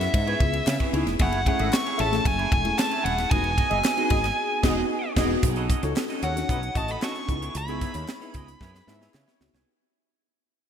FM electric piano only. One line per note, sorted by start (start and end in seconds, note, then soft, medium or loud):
0.00 0.26 B3 medium
0.00 0.27 C#4 medium
0.00 0.27 E4 medium
0.00 0.94 G#4 medium
0.26 0.84 B3 medium
0.26 0.85 C#4 medium
0.26 0.85 E4 medium
0.26 0.85 B4 medium
0.93 1.20 B3 loud
0.93 1.20 D#4 medium
0.93 1.20 E4 medium
0.93 1.20 G#4 loud
1.46 2.04 A3 medium
1.46 2.04 C#4 medium
1.46 2.04 E4 medium
1.46 2.05 G#4 medium
2.12 2.58 A3 medium
2.12 2.59 C#4 medium
2.12 2.59 E4 medium
2.12 2.59 A4 medium
2.65 3.23 A3 medium
2.65 3.23 C#4 medium
2.65 3.23 E4 medium
2.65 3.23 G#4 medium
3.31 3.89 B3 medium
3.31 3.89 D#4 medium
3.31 3.90 F#4 medium
3.31 3.90 G#4 medium
3.97 4.37 B3 medium
3.97 4.37 D#4 medium
3.97 4.37 F#4 medium
3.97 4.38 G#4 loud
4.63 4.82 B3 loud
4.63 4.82 D#4 loud
4.63 4.82 F#4 loud
4.63 4.82 G#4 loud
5.17 5.35 B3 loud
5.17 5.35 D#4 loud
5.17 5.35 F#4 loud
5.17 5.36 G#4 loud
5.83 6.29 C#4 medium
5.83 6.29 D#4 medium
5.83 6.29 F#4 medium
5.83 6.30 A4 loud
6.35 6.93 C#4 medium
6.35 6.42 D4 medium
6.35 6.94 F#4 medium
6.35 6.94 A4 medium
6.42 6.97 D#4 medium
7.02 7.28 C#4 medium
7.02 7.27 D#4 medium
7.02 7.29 F#4 medium
7.02 7.29 A4 medium
7.27 7.62 B3 medium
7.27 7.63 D#4 medium
7.27 7.63 E4 medium
7.27 7.63 G#4 medium
7.68 8.14 B3 medium
7.68 8.14 D#4 medium
7.68 8.14 E4 medium
7.68 8.15 G#4 medium
8.20 8.78 B3 medium
8.20 8.79 D#4 medium
8.20 8.79 E4 medium
8.20 8.79 G#4 loud
8.87 9.33 B3 medium
8.87 9.34 D#4 medium
8.87 9.34 E4 medium
8.87 9.34 G#4 loud
9.40 9.66 B3 medium
9.40 9.67 D#4 medium
9.40 9.67 E4 medium
9.40 9.67 F#4 medium